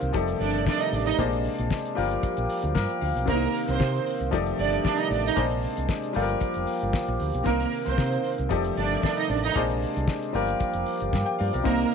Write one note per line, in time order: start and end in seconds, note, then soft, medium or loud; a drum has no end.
0.00 0.11 C2 medium
0.00 0.11 C3 medium
0.00 0.13 C3 medium
0.00 1.17 D#3 medium
0.00 0.14 A#3 medium
0.00 0.12 C4 medium
0.00 0.12 D#4 medium
0.00 0.13 A#4 medium
0.00 closed hi-hat soft
0.13 0.32 F1 medium
0.13 1.17 C3 medium
0.13 1.16 F3 medium
0.13 1.18 G3 medium
0.13 1.18 A3 medium
0.13 1.16 D#4 medium
0.13 1.16 G4 medium
0.13 1.17 A4 medium
0.13 1.17 D5 medium
0.13 kick loud
0.13 closed hi-hat medium
0.28 closed hi-hat soft
0.40 0.68 G1 medium
0.40 0.61 D4 medium
0.40 0.61 D5 medium
0.40 open hi-hat medium
0.54 closed hi-hat soft
0.67 0.78 D4 medium
0.67 0.78 D5 medium
0.67 kick loud
0.67 snare loud
0.80 0.90 D#4 medium
0.80 0.90 D#5 medium
0.80 closed hi-hat soft
0.93 1.11 A1 medium
0.93 1.04 D4 medium
0.93 1.04 D5 medium
0.93 open hi-hat medium
1.06 1.16 D#4 medium
1.06 1.16 D#5 medium
1.06 closed hi-hat medium
1.18 1.47 A#1 loud
1.18 1.96 C3 medium
1.18 1.97 G#3 medium
1.18 1.97 A#3 medium
1.18 1.97 D4 medium
1.18 1.97 G#4 medium
1.18 1.97 C5 medium
1.18 1.98 D5 medium
1.18 kick loud
1.18 closed hi-hat medium
1.33 closed hi-hat soft
1.45 open hi-hat medium
1.58 1.68 A#1 medium
1.58 closed hi-hat medium
1.71 kick loud
1.71 snare loud
1.85 closed hi-hat soft
1.95 2.16 G1 medium
1.95 3.26 F3 medium
1.95 3.24 G3 medium
1.95 4.30 A#3 medium
1.95 3.24 D4 medium
1.95 3.25 F4 medium
1.95 3.26 G4 medium
1.95 2.73 A#4 medium
1.95 open hi-hat medium
2.11 closed hi-hat soft
2.23 kick loud
2.23 closed hi-hat medium
2.37 2.46 A#1 medium
2.37 closed hi-hat soft
2.50 open hi-hat medium
2.62 2.72 D2 medium
2.62 closed hi-hat soft
2.75 2.85 G2 medium
2.75 2.99 A#4 medium
2.75 kick loud
2.75 snare loud
2.89 closed hi-hat soft
3.01 3.11 D2 medium
3.01 3.26 F5 medium
3.01 open hi-hat medium
3.16 3.28 B1 medium
3.16 closed hi-hat medium
3.26 3.46 C2 loud
3.26 4.29 C3 medium
3.26 5.34 D#3 medium
3.26 3.49 A#3 loud
3.26 4.30 C4 medium
3.26 3.34 D4 soft
3.26 3.49 A#4 loud
3.26 4.31 A#4 medium
3.26 kick loud
3.26 closed hi-hat medium
3.34 4.30 D#4 medium
3.42 closed hi-hat soft
3.54 open hi-hat medium
3.68 3.77 C2 medium
3.68 4.05 C4 medium
3.68 4.04 C5 medium
3.68 closed hi-hat medium
3.80 3.98 C3 loud
3.80 kick loud
3.80 snare loud
3.96 closed hi-hat soft
4.07 open hi-hat medium
4.21 4.29 C2 medium
4.21 closed hi-hat soft
4.30 4.51 F1 medium
4.30 5.35 C3 medium
4.30 5.34 F3 medium
4.30 5.35 G3 medium
4.30 5.35 A3 medium
4.30 5.35 D#4 medium
4.30 5.35 G4 medium
4.30 5.36 A4 medium
4.30 kick loud
4.30 closed hi-hat medium
4.35 5.36 D5 medium
4.46 closed hi-hat soft
4.59 4.77 G1 medium
4.59 4.80 D4 medium
4.59 4.80 D5 medium
4.59 open hi-hat medium
4.73 closed hi-hat soft
4.85 4.97 D4 medium
4.85 4.96 D5 medium
4.85 kick loud
4.85 snare loud
4.98 5.08 D#4 medium
4.98 5.09 D#5 medium
4.98 closed hi-hat soft
5.10 5.29 A1 medium
5.10 5.24 D4 medium
5.10 5.23 D5 medium
5.10 open hi-hat medium
5.26 5.36 D#4 medium
5.26 5.36 D#5 medium
5.26 closed hi-hat medium
5.36 5.65 A#1 loud
5.36 6.14 C3 medium
5.36 6.14 G#3 medium
5.36 6.15 A#3 medium
5.36 6.14 D4 medium
5.36 6.15 G#4 medium
5.36 6.15 C5 medium
5.36 6.16 D5 medium
5.36 kick loud
5.36 closed hi-hat medium
5.50 closed hi-hat soft
5.62 open hi-hat medium
5.77 5.86 C2 medium
5.77 closed hi-hat medium
5.89 kick loud
5.89 snare loud
6.03 closed hi-hat soft
6.13 6.34 G1 loud
6.13 7.45 F3 medium
6.13 7.42 G3 medium
6.13 8.49 A#3 medium
6.13 7.43 D4 medium
6.13 7.44 F4 medium
6.13 7.45 G4 medium
6.13 6.22 A4 medium
6.13 open hi-hat medium
6.22 7.45 A#4 medium
6.28 closed hi-hat soft
6.41 kick loud
6.41 closed hi-hat medium
6.54 6.65 F1 medium
6.54 closed hi-hat soft
6.67 open hi-hat medium
6.80 6.91 G1 medium
6.80 closed hi-hat soft
6.93 kick loud
6.93 snare loud
7.06 7.17 A#1 medium
7.06 closed hi-hat soft
7.20 7.30 D2 medium
7.20 open hi-hat medium
7.34 7.42 B1 medium
7.34 closed hi-hat medium
7.44 7.64 C2 medium
7.44 8.48 C3 medium
7.44 8.49 C3 medium
7.44 9.54 D#3 medium
7.44 7.67 A#3 loud
7.44 8.48 C4 medium
7.44 8.48 D#4 medium
7.44 7.67 A#4 loud
7.44 8.49 A#4 medium
7.44 kick loud
7.44 closed hi-hat medium
7.60 closed hi-hat soft
7.72 open hi-hat medium
7.85 7.95 C2 medium
7.85 8.22 C4 medium
7.85 8.22 C5 medium
7.85 closed hi-hat medium
7.98 8.17 C3 medium
7.98 kick loud
7.98 snare loud
8.12 closed hi-hat soft
8.24 open hi-hat medium
8.38 8.48 C2 medium
8.38 closed hi-hat soft
8.49 8.70 F1 loud
8.49 9.54 C3 medium
8.49 9.53 F3 medium
8.49 9.54 G3 medium
8.49 9.54 A3 medium
8.49 9.53 D#4 medium
8.49 9.53 G4 medium
8.49 9.54 A4 medium
8.49 9.54 D5 medium
8.49 kick medium
8.49 closed hi-hat medium
8.64 closed hi-hat soft
8.77 8.95 G1 medium
8.77 8.98 D4 medium
8.77 8.99 D5 medium
8.77 open hi-hat medium
8.91 closed hi-hat soft
9.03 9.14 D4 medium
9.03 9.15 D5 medium
9.03 kick loud
9.03 snare loud
9.17 9.28 D#4 medium
9.17 9.28 D#5 medium
9.17 closed hi-hat soft
9.30 9.48 A1 medium
9.30 9.41 D4 medium
9.30 9.42 D5 medium
9.30 open hi-hat medium
9.44 9.54 D#4 medium
9.44 9.54 D#5 medium
9.44 closed hi-hat medium
9.55 9.84 A#1 loud
9.55 10.33 C3 medium
9.55 10.33 G#3 medium
9.55 10.34 A#3 medium
9.55 10.33 D4 medium
9.55 10.35 G#4 medium
9.55 10.35 C5 medium
9.55 10.35 D5 medium
9.55 kick loud
9.55 closed hi-hat medium
9.70 closed hi-hat soft
9.82 open hi-hat medium
9.96 10.05 C2 medium
9.96 closed hi-hat medium
10.08 kick loud
10.08 snare loud
10.23 closed hi-hat soft
10.33 10.53 G1 loud
10.33 11.65 F3 medium
10.33 11.62 G3 medium
10.33 11.95 A#3 medium
10.33 11.63 D4 medium
10.33 11.63 F4 medium
10.33 11.65 G4 medium
10.33 10.86 A#4 medium
10.33 open hi-hat medium
10.48 closed hi-hat soft
10.60 kick loud
10.60 closed hi-hat medium
10.73 10.83 F1 medium
10.73 closed hi-hat soft
10.86 open hi-hat medium
11.00 11.10 G1 medium
11.00 closed hi-hat soft
11.13 11.23 G2 medium
11.13 kick loud
11.13 snare loud
11.26 11.38 G5 medium
11.26 closed hi-hat soft
11.39 11.50 G2 loud
11.39 11.52 D5 medium
11.39 11.52 F5 medium
11.39 open hi-hat medium
11.53 11.62 B1 medium
11.53 11.65 A#4 medium
11.53 11.78 D5 medium
11.53 closed hi-hat medium
11.63 11.84 C2 loud
11.63 11.95 C3 medium
11.63 11.87 A#3 loud
11.63 11.95 C4 medium
11.63 11.95 D#4 medium
11.63 11.86 A#4 loud
11.63 11.95 A#4 medium
11.63 kick loud
11.63 closed hi-hat medium
11.80 closed hi-hat soft